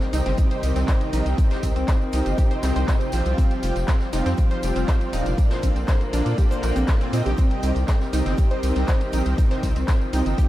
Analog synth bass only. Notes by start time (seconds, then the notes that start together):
0.13 C2
0.26 G1
0.63 C2
0.76 C2
1.13 A#1
1.26 C2
1.63 C2
1.76 C2
2.13 C2
2.26 G1
2.63 C2
2.76 C2
3.13 A#1
3.26 C2
3.63 F1
3.76 F1
4.13 F1
4.26 F2
4.63 F1
4.76 F1
5.13 D#1
5.26 F1
5.63 A#1
5.76 A#1
6.13 A#1
6.26 A#2
6.63 A#1
6.76 A#1
7.13 A#2
7.26 A#1
7.63 C2
7.76 C2
8.13 C2
8.26 G1
8.63 C2
8.76 C2
9.13 A#1
9.26 C2
9.63 C2
9.76 C2
10.13 C2
10.26 G1